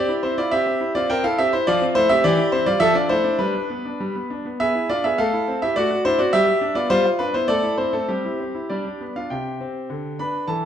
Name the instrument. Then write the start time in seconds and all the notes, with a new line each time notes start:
grand piano
Already playing: G4 D5
0.08 E4
0.23 C4 E4 C5
0.38 E4 F4 D5
0.51 C4 G4 E5
0.67 C4
0.81 E4
0.95 C4 F4 D5
1.10 C4 A#4 G5
1.24 E4 A4 F5
1.39 C4 G4 E5
1.53 E4 C5
1.67 F3 F4 D5
1.82 C4
1.95 A3 E4 C5
2.09 C4 G4 E5
2.24 E3 G4 D5
2.38 E4
2.52 C4 E4 C5
2.66 G3 F4 D5
2.80 F3 A4 E5
2.95 D4 F4 D5
3.09 A3 E4 C5
3.24 D4
3.39 G3 D4 B4
3.55 D4
3.70 B3
3.85 D4
4.00 G3
4.15 B3
4.30 D4
4.45 B3
4.60 B3 G#4 E5
4.75 E4
4.89 D4 F4 D5
5.04 B3 G#4 E5
5.18 A3 A4 F5
5.33 E4
5.48 C4
5.62 E4 G4 E5
5.76 A3 F#4 D5
5.91 F#4
6.05 D4 E4 C5
6.19 C4 F#4 D5
6.33 G3 G4 E5
6.47 G4
6.61 D4
6.75 B3 F4 D5
6.90 G3 F4 C5
7.05 F4
7.19 D4 B4
7.34 B3 E4 C5
7.48 A3 A4 D5
7.63 E4
7.78 C4 E4 C5
7.93 A3 C4 A4
8.08 G3 C4 G4
8.25 E4
8.40 C4
8.55 E4
8.70 G3 D4 D5
8.85 D4
9.01 B3
9.16 D4 F4 F5
9.30 C3 G4 G5
9.61 C4
9.90 D3
10.19 D4 B4 B5
10.48 E3 A4 A5